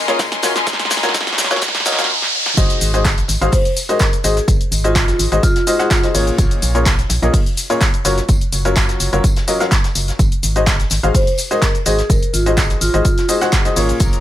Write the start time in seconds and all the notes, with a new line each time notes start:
Already playing: A#4 D#5 G#5 C6, riser
0.08 A#2 C#4 F4 G#4 A#4 C#5, snare, closed hi-hat, shaker
0.19 kick, snare, closed hi-hat, tambourine, shaker
0.32 snare, closed hi-hat, shaker
0.43 F#3 C#4 F4 F#4 A#4 C#5, snare, open hi-hat, tambourine, shaker
0.56 snare, closed hi-hat, shaker
0.67 kick, snare, closed hi-hat, tambourine, shaker
0.73 snare
0.79 snare, closed hi-hat, shaker
0.85 snare
0.90 snare, open hi-hat, tambourine, shaker
0.97 snare
1.03 F#3 C#4 F4 F#4 A#4 C#5, snare, closed hi-hat, shaker
1.09 snare
1.14 kick, snare, closed hi-hat, tambourine, shaker
1.21 snare
1.27 snare, closed hi-hat, shaker
1.33 snare
1.38 snare, open hi-hat, tambourine, shaker
1.44 snare
1.51 F#3 C#4 F4 F#4 A#4 C#5, snare, closed hi-hat, shaker
1.56 snare
1.61 kick, snare, closed hi-hat, tambourine, shaker
1.68 snare
1.75 snare, closed hi-hat, shaker
1.80 snare
1.85 F#3 C#4 F4 F#4 A#4 D#5, snare, open hi-hat, tambourine, shaker
1.92 snare
1.98 F#3 C#4 F4 F#4 A#4 F5, snare, closed hi-hat, shaker
2.04 snare
2.10 snare
2.22 snare
2.46 snare
2.57 G#1 G#3 D#4 F#4 G#4 C5 D#5, kick, closed hi-hat, tambourine, shaker
2.70 closed hi-hat, shaker
2.81 G#1, open hi-hat, tambourine, shaker
2.94 G#3 D#4 F#4 G#4 C5 D#5, closed hi-hat, shaker
3.05 kick, snare, clap, closed hi-hat, tambourine, shaker
3.17 snare, closed hi-hat, shaker
3.28 G#1, snare, open hi-hat, tambourine, shaker
3.41 G#1 G#3 D#4 F#4 G#4 C5 F5, closed hi-hat, shaker
3.52 C5, kick, closed hi-hat, open hi-hat, shaker
3.65 closed hi-hat, shaker
3.76 open hi-hat, tambourine, shaker
3.89 G#3 D#4 F#4 G#4 A#4 C5 D#5, closed hi-hat, shaker
3.99 A#4, kick, snare, clap, closed hi-hat, tambourine, shaker
4.13 closed hi-hat, shaker
4.24 G#1 G#3 D#4 F#4 G#4 C5 D#5, open hi-hat, tambourine, shaker
4.37 snare, closed hi-hat, shaker
4.48 G#1, kick, closed hi-hat, tambourine, shaker
4.61 closed hi-hat, shaker
4.71 G#1, open hi-hat, tambourine, shaker
4.84 G#3 D#4 F4 F#4 G#4 C5 D#5, closed hi-hat, shaker
4.95 kick, snare, clap, closed hi-hat, tambourine, shaker
5.08 snare, closed hi-hat, shaker
5.19 G#1, open hi-hat, tambourine, shaker
5.32 G#1 G#3 D#4 F#4 G#4 C5 D#5, closed hi-hat, shaker
5.43 F4, kick, closed hi-hat, tambourine, shaker
5.56 snare, closed hi-hat, shaker
5.67 G#3 D#4 F4 F#4 G#4 C5 D#5, open hi-hat, tambourine, shaker
5.79 G#3 D#4 F#4 G#4 C5 F#5, snare, closed hi-hat, shaker
5.91 kick, snare, clap, closed hi-hat, tambourine, shaker
6.03 G#3 D#4 F#4 G#4 C5 D#5, snare, closed hi-hat, shaker
6.14 G#1 A#2 C#4 F4 G#4 A#4 C#5, open hi-hat, shaker
6.27 closed hi-hat, shaker
6.38 A#1, kick, closed hi-hat, tambourine, shaker
6.51 closed hi-hat, shaker
6.62 A#1, open hi-hat, tambourine, shaker
6.75 A#2 C#4 F4 G#4 A#4 C#5, closed hi-hat, shaker
6.86 kick, snare, clap, closed hi-hat, tambourine, shaker
6.98 snare, closed hi-hat, shaker
7.09 A#1, snare, open hi-hat, tambourine, shaker
7.22 A#1 A#2 C#4 F4 G#4 A#4 D#5, closed hi-hat, shaker
7.34 kick, closed hi-hat, open hi-hat, shaker
7.46 closed hi-hat, shaker
7.57 open hi-hat, tambourine, shaker
7.70 A#2 C#4 F4 G#4 A#4 C#5, closed hi-hat, shaker
7.81 kick, snare, clap, closed hi-hat, tambourine, shaker
7.94 closed hi-hat, shaker
8.05 F#1 F#3 C#4 F4 F#4 A#4 C#5, open hi-hat, tambourine, shaker
8.18 snare, closed hi-hat, shaker
8.29 F#1, kick, closed hi-hat, tambourine, shaker
8.41 closed hi-hat, shaker
8.52 F#1, open hi-hat, tambourine, shaker
8.65 F#3 C#4 F4 F#4 A#4 C#5, closed hi-hat, shaker
8.76 kick, snare, clap, closed hi-hat, tambourine, shaker
8.89 snare, closed hi-hat, shaker
9.00 F#1, open hi-hat, tambourine, shaker
9.13 F#1 F#3 C#4 F4 F#4 A#4 C#5, closed hi-hat, shaker
9.24 kick, closed hi-hat, tambourine, shaker
9.36 snare, closed hi-hat, shaker
9.48 F#3 C#4 F4 F#4 A#4 D#5, open hi-hat, tambourine, shaker
9.60 F#3 C#4 F4 F#4 A#4 F5, snare, closed hi-hat, shaker
9.72 kick, snare, clap, closed hi-hat, tambourine, shaker
9.84 snare, closed hi-hat, shaker
9.95 F#1, open hi-hat, tambourine, shaker
10.08 snare, closed hi-hat, shaker
10.19 G#1, kick, closed hi-hat, tambourine, shaker
10.32 closed hi-hat, shaker
10.43 G#1, open hi-hat, tambourine, shaker
10.56 G#3 D#4 F#4 G#4 C5 D#5, closed hi-hat, shaker
10.66 kick, snare, clap, closed hi-hat, tambourine, shaker
10.79 snare, closed hi-hat, shaker
10.90 G#1, snare, open hi-hat, tambourine, shaker
11.03 G#1 G#3 D#4 F#4 G#4 C5 F5, closed hi-hat, shaker
11.14 C5, kick, closed hi-hat, open hi-hat, shaker
11.27 closed hi-hat, shaker
11.38 open hi-hat, tambourine, shaker
11.51 G#3 D#4 F#4 G#4 A#4 C5 D#5, closed hi-hat, shaker
11.62 kick, snare, clap, closed hi-hat, tambourine, shaker
11.75 closed hi-hat, shaker
11.86 G#1 G#3 D#4 F#4 G#4 C5 D#5, open hi-hat, tambourine, shaker
11.99 snare, closed hi-hat, shaker
12.10 G#1 A#4, kick, closed hi-hat, tambourine, shaker
12.23 closed hi-hat, shaker
12.33 G#1 F4, open hi-hat, tambourine, shaker
12.46 G#3 D#4 F#4 G#4 C5 D#5, closed hi-hat, shaker
12.57 kick, snare, clap, closed hi-hat, tambourine, shaker
12.70 snare, closed hi-hat, shaker
12.81 G#1 F4, open hi-hat, tambourine, shaker
12.94 G#1 G#3 D#4 F#4 G#4 C5 D#5, closed hi-hat, shaker
13.05 kick, closed hi-hat, tambourine, shaker
13.18 snare, closed hi-hat, shaker
13.28 G#3 D#4 F#4 G#4 C5 D#5, open hi-hat, tambourine, shaker
13.41 G#3 D#4 F#4 G#4 C5 F#5, snare, closed hi-hat, shaker
13.52 kick, snare, clap, closed hi-hat, tambourine, shaker
13.65 G#3 D#4 F#4 G#4 C5 D#5, snare, closed hi-hat, shaker
13.76 G#1 A#2 C#4 F4 G#4 A#4 C#5, open hi-hat, shaker
13.89 closed hi-hat, shaker
14.00 A#1 A#4, kick, closed hi-hat, tambourine, shaker
14.13 closed hi-hat, shaker